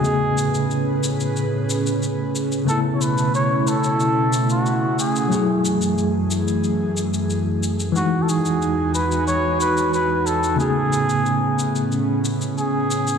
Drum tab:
SH |x-xxx-xxx-xxx-xx|x-xxx-xxx-xxx-xx|x-xxx-xxx-xxx-xx|x-xxx-xxx-xxx-xx|

SH |x-xxx-xxx-xxx-xx|